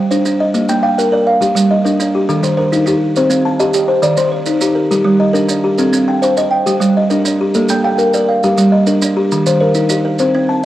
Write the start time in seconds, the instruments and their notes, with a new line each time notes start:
Already playing: kalimba G3 G4
0.11 kalimba D4 C5, maracas
0.25 kalimba D4, maracas
0.40 kalimba D#5
0.54 kalimba A#3, maracas
0.69 kalimba A#3 G5, maracas
0.83 kalimba F5 G5
0.98 kalimba A#4, maracas
1.12 kalimba A#4 D5
1.27 kalimba F5
1.41 kalimba G3 G4, maracas
1.55 kalimba G3, maracas
1.71 kalimba D#5
1.85 kalimba D4 A#4, maracas
2.00 kalimba D4, maracas
2.15 kalimba G4
2.29 kalimba D#3 A4, maracas
2.43 kalimba D#3 C5, maracas
2.57 kalimba A#4 C5
2.72 kalimba D#4, maracas
2.86 kalimba D#4 G4, maracas
3.16 kalimba C4 C5, maracas
3.30 kalimba C4, maracas
3.45 kalimba A5
3.60 kalimba G4 D#5, maracas
3.74 kalimba G4, maracas
3.88 kalimba C5
4.02 kalimba D#3 D5, maracas
4.17 kalimba D#3 C5, maracas
4.32 kalimba C5
4.46 kalimba D#4, maracas
4.61 kalimba D#4 G4, maracas
4.75 kalimba A#4
4.91 kalimba G3 G4, maracas
5.05 kalimba G3
5.20 kalimba D#5
5.33 kalimba D4 A#4, maracas
5.49 kalimba D4, maracas
5.64 kalimba G4
5.78 kalimba C4 A4, maracas
5.93 kalimba C4, maracas
6.08 kalimba G5 A5
6.22 kalimba C5, maracas
6.37 kalimba C5 D#5, maracas
6.51 kalimba G5
6.66 kalimba G3 G4, maracas
6.80 kalimba G3, maracas
6.97 kalimba D#5
7.10 kalimba D4 A#4, maracas
7.25 kalimba D4, maracas
7.41 kalimba G4
7.54 kalimba A#3 A4, maracas
7.68 kalimba A#3 G5, maracas
7.84 kalimba F5 G5
7.98 kalimba A#4, maracas
8.13 kalimba A#4 D5, maracas
8.29 kalimba F5
8.43 kalimba G3 G4, maracas
8.58 kalimba G3, maracas
8.72 kalimba D#5
8.87 kalimba D4 A#4, maracas
9.02 kalimba D4, maracas
9.17 kalimba G4
9.31 kalimba D#3, maracas
9.46 kalimba D#3 C5, maracas
9.61 kalimba A#4 C5
9.74 kalimba D#4, maracas
9.89 kalimba D#4 G4, maracas
10.05 kalimba A#4
10.19 kalimba C4 C5, maracas
10.35 kalimba C4
10.49 kalimba A5